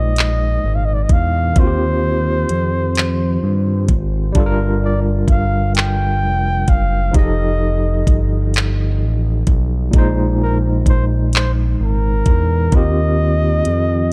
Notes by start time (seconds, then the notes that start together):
Already playing: A#1 A#2 G#3 D#4 C5 D#5
0.16 clap, closed hi-hat
0.64 G#1
0.76 F5
0.85 D#5
0.94 D5
1.03 D#5
1.09 E2 F5, kick, closed hi-hat
1.53 D#2 D#3 C4, kick, closed hi-hat
1.58 F4 F#4 C5
1.67 G4
2.49 F2, closed hi-hat
2.95 clap, closed hi-hat
3.43 G2
3.88 G#1, kick, closed hi-hat
4.32 G1 G3 D4, kick, closed hi-hat
4.37 F4 A4
4.46 A#4
4.84 D5
5.28 G1 F5, kick, closed hi-hat
5.75 G5, clap, closed hi-hat
6.22 F1
6.68 F#1 F5, kick, closed hi-hat
7.11 F1 F3 D#4 G4, kick, closed hi-hat
7.16 G#4 D#5
7.24 A4
8.07 G1, kick, closed hi-hat
8.54 clap, closed hi-hat
9.01 A1
9.47 B1, kick, closed hi-hat
9.91 A#1 A#2 G#3, kick, closed hi-hat
9.96 D#4 C5
10.43 A#4
10.86 A#1 C5, kick, closed hi-hat
11.33 C5, clap, closed hi-hat
11.80 G#1 A#4
12.26 E2, kick, closed hi-hat
12.70 D#2 D#3 C4, kick, closed hi-hat
12.75 F4 G4 D#5
13.65 F2, closed hi-hat